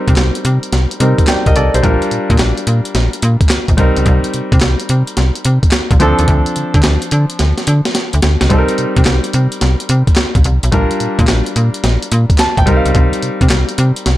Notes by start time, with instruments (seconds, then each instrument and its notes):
Already playing: grand piano G3 C4 D#4 A#4
0.08 fm bass C3, kick, closed hi-hat
0.16 fm bass C2, snare, clap, closed hi-hat
0.35 closed hi-hat
0.45 fm bass C3, closed hi-hat
0.63 closed hi-hat
0.73 fm bass C2, snare, closed hi-hat
0.91 closed hi-hat
1.00 fm bass C3, grand piano G3 C4 D#4 A#4, closed hi-hat
1.18 kick, closed hi-hat
1.27 grand piano D5 G5, snare, clap, closed hi-hat
1.46 fm bass C2, grand piano A#4 D#5, kick, closed hi-hat
1.56 fm bass C2, grand piano A4 D5, closed hi-hat
1.74 fm bass B1, grand piano G4 C5, closed hi-hat
1.82 fm bass A#1, grand piano G3 D4 F4 A#4, kick, closed hi-hat
2.02 closed hi-hat
2.11 fm bass A#2, closed hi-hat
2.30 fm bass A#2, kick, closed hi-hat
2.38 fm bass A#1, snare, clap, closed hi-hat
2.58 closed hi-hat
2.67 fm bass A#2, closed hi-hat
2.85 closed hi-hat
2.95 fm bass A#1, snare, closed hi-hat
3.13 closed hi-hat
3.22 fm bass A#2, closed hi-hat
3.41 kick, closed hi-hat
3.49 snare, clap, closed hi-hat
3.68 fm bass A#1, kick, closed hi-hat
3.77 fm bass C2, grand piano G3 C4 D#4 A#4, kick, closed hi-hat
3.97 fm bass C#2, closed hi-hat
4.06 fm bass C2, kick, closed hi-hat
4.24 closed hi-hat
4.34 fm bass C3, closed hi-hat
4.52 fm bass C3, kick, closed hi-hat
4.61 fm bass C2, snare, clap, closed hi-hat
4.80 closed hi-hat
4.89 fm bass C3, closed hi-hat
5.07 closed hi-hat
5.17 fm bass C2, snare, closed hi-hat
5.35 closed hi-hat
5.45 fm bass C3, closed hi-hat
5.63 kick, closed hi-hat
5.71 snare, clap, closed hi-hat
5.91 fm bass C2, kick, closed hi-hat
5.99 fm bass D2, grand piano F3 C4 D4 A4, closed hi-hat
6.19 fm bass D#2, closed hi-hat
6.28 fm bass D2, kick, closed hi-hat
6.46 closed hi-hat
6.56 fm bass D3, closed hi-hat
6.74 fm bass D3, kick, closed hi-hat
6.83 fm bass D2, snare, clap, closed hi-hat
7.02 closed hi-hat
7.11 fm bass D3, closed hi-hat
7.30 closed hi-hat
7.39 fm bass D2, snare, closed hi-hat
7.58 snare, closed hi-hat
7.67 fm bass D3, closed hi-hat
7.85 snare, closed hi-hat
7.95 snare, closed hi-hat
8.13 fm bass D2, closed hi-hat
8.22 fm bass D2, snare, closed hi-hat
8.41 fm bass C#2, snare, closed hi-hat
8.49 fm bass C2, grand piano G3 C4 D#4 A4, kick, closed hi-hat
8.58 grand piano A#4
8.68 closed hi-hat
8.78 fm bass C3, closed hi-hat
8.96 fm bass C3, kick, closed hi-hat
9.05 fm bass C2, snare, clap, closed hi-hat
9.24 closed hi-hat
9.33 fm bass C3, closed hi-hat
9.52 closed hi-hat
9.61 fm bass C2, snare, closed hi-hat
9.80 closed hi-hat
9.89 fm bass C3, closed hi-hat
10.07 kick, closed hi-hat
10.16 snare, clap, closed hi-hat
10.35 fm bass C2, kick, closed hi-hat
10.44 fm bass C2, closed hi-hat
10.63 fm bass B1, closed hi-hat
10.72 fm bass A#1, grand piano G3 D4 F4 A#4, kick, closed hi-hat
10.91 closed hi-hat
11.00 fm bass A#2, closed hi-hat
11.19 fm bass A#2, kick, closed hi-hat
11.27 fm bass A#1, snare, clap, closed hi-hat
11.46 closed hi-hat
11.56 fm bass A#2, closed hi-hat
11.74 closed hi-hat
11.84 fm bass A#1, snare, closed hi-hat
12.03 closed hi-hat
12.12 fm bass A#2, closed hi-hat
12.30 kick, closed hi-hat
12.38 grand piano A5, snare, clap, closed hi-hat
12.57 fm bass A#1, grand piano G5, kick, closed hi-hat
12.66 fm bass C2, grand piano G3 C4 D#4 A#4, kick, closed hi-hat
12.76 grand piano F5
12.86 fm bass C#2, closed hi-hat
12.95 fm bass C2, kick, closed hi-hat
13.13 closed hi-hat
13.22 fm bass C3, closed hi-hat
13.41 fm bass C3, kick, closed hi-hat
13.49 fm bass C2, snare, clap, closed hi-hat
13.69 closed hi-hat
13.78 fm bass C3, closed hi-hat
13.96 closed hi-hat
14.06 fm bass C2, snare, closed hi-hat